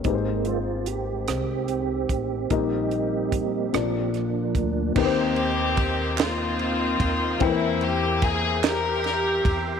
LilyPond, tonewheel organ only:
<<
  \new Staff \with { instrumentName = "Tonewheel organ" } { \time 6/8 \key ees \major \tempo 4. = 49 r8 f'8 g'8 <c' g'>4.~ | <c' g'>2 r4 | <ees'' g'' c'''>2. | <e'' g'' c'''>2. | }
  \new Staff \with { instrumentName = "Tonewheel organ" } { \time 6/8 \key ees \major <aes bes c'>8 r2 r8 | <g bes ees'>4. <f bes d'>4. | bes'2.~ | bes'2. | }
>>